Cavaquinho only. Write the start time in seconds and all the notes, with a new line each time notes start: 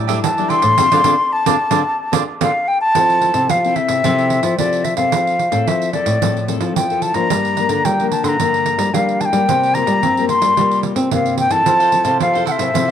0.07 G4 A4 D5 E5
0.37 A4 D5 E5
0.49 G4 A4 D5 E5
0.62 A4 D5 E5
0.78 C5 D5 F5
0.92 C5 D5 F5
1.04 C5 D5 F5
1.46 C5 D5 F5
1.71 C5 D5 F5
2.13 C5 D5 F5
2.41 C5 D5 F5
11.65 E4 A4 C5 F5
11.79 A4 C5 F5
11.91 muted cavaquinho stroke
12.04 A4 C5 F5
12.19 E4 A4 C5 F5
12.33 A4 C5 F5
12.45 E4 A4 C5 F5
12.74 E4 A4 C5 F5
12.88 F5